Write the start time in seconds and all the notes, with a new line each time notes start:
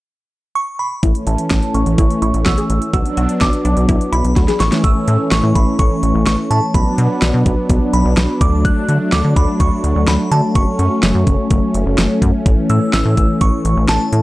0.55 C#6
0.79 B5
1.03 A1 E3 A3 C#4 E4, kick, closed hi-hat
1.15 closed hi-hat
1.27 A1 E4 A5, closed hi-hat
1.38 closed hi-hat
1.51 A1 C#4, kick, snare, closed hi-hat
1.62 closed hi-hat
1.74 A1 C#4 C#6, closed hi-hat
1.86 A1, closed hi-hat
1.98 A1 E4, kick, closed hi-hat
2.10 closed hi-hat
2.22 A1 E4 C#6, closed hi-hat
2.34 A1, closed hi-hat
2.46 B1 F#4 E6, kick, snare, closed hi-hat
2.58 G#4, closed hi-hat
2.70 A1, closed hi-hat
2.82 closed hi-hat
2.93 B1 F#3 B3 D4 F#4 E6, kick, closed hi-hat
3.06 closed hi-hat
3.17 B1 F#4, closed hi-hat
3.29 closed hi-hat
3.41 B1 D4 D6, kick, snare, closed hi-hat
3.53 closed hi-hat
3.65 B1 D4, closed hi-hat
3.77 B1, closed hi-hat
3.89 B1 E4, kick, closed hi-hat
4.01 closed hi-hat
4.12 B1 E4 B5, closed hi-hat
4.24 B1, closed hi-hat
4.36 D2 F#4, kick, snare, closed hi-hat
4.48 G#4, snare, closed hi-hat
4.60 A1 E3 A3 C#4 C#6, snare, closed hi-hat
4.72 snare, closed hi-hat
4.84 A1 E3 A3 C#4 E6, kick, closed hi-hat
5.08 A2, closed hi-hat
5.31 A1 C#6, snare, closed hi-hat
5.43 A2
5.55 A1 B5, kick, closed hi-hat
5.79 A1 C#6, kick, closed hi-hat
6.03 A1, closed hi-hat
6.15 A1
6.27 A1 C#6, snare, closed hi-hat
6.51 A2 A5, closed hi-hat
6.74 B1 F#3 B3 D4 B5, kick, closed hi-hat
6.98 B2, closed hi-hat
7.22 B1, snare, closed hi-hat
7.34 B2
7.46 B1, kick, closed hi-hat
7.69 B1, kick, closed hi-hat
7.93 B1 B5, closed hi-hat
8.05 B1
8.17 B1, snare, closed hi-hat
8.41 D2 A3 D6, kick, closed hi-hat
8.65 F#6, kick, closed hi-hat
8.89 D3, closed hi-hat
9.12 D2 D6, snare, closed hi-hat
9.24 D3
9.36 D2 B5, kick, closed hi-hat
9.60 D2 C#6, kick, closed hi-hat
9.84 D2, closed hi-hat
9.96 D2
10.08 D2 B5, snare, closed hi-hat
10.31 D3 A5, closed hi-hat
10.55 F#1 C#4 C#6, kick, closed hi-hat
10.79 F#2, closed hi-hat
11.03 F#1, snare, closed hi-hat
11.15 F#2
11.27 F#1, kick, closed hi-hat
11.50 F#1, kick, closed hi-hat
11.74 F#1, closed hi-hat
11.86 F#1
11.98 F#1, snare, closed hi-hat
12.22 F#2, kick, closed hi-hat
12.46 A1 E3, kick, closed hi-hat
12.70 A2 E6, closed hi-hat
12.93 A1 E6, snare, closed hi-hat
13.05 A2
13.17 A1, kick, closed hi-hat
13.41 A1 C#6, kick, closed hi-hat
13.65 A1, closed hi-hat
13.77 A1
13.89 A1 A5, snare, closed hi-hat
14.13 A2, closed hi-hat